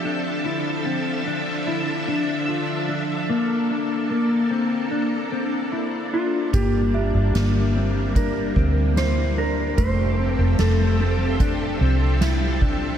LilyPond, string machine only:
\new Staff \with { instrumentName = "String machine" } { \time 4/4 \key f \major \tempo 4 = 74 << { <d f d' e''>1 | <bes a'>1 | <g bes>1 | <f c' g' e''>1 | } \\ { a'1 | d'1~ | d'1 | a'1 | } >> }